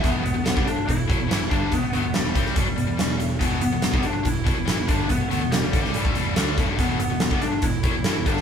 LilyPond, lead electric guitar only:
\new Staff \with { instrumentName = "Lead electric guitar" } { \time 4/4 \key e \minor \tempo 4 = 142 b8 b4 d'8 e'4. d'8 | b8 b8 g2~ g8 r8 | b8 b4 d'8 e'4. d'8 | b8 b8 g2~ g8 r8 |
b8 b4 d'8 e'4. d'8 | }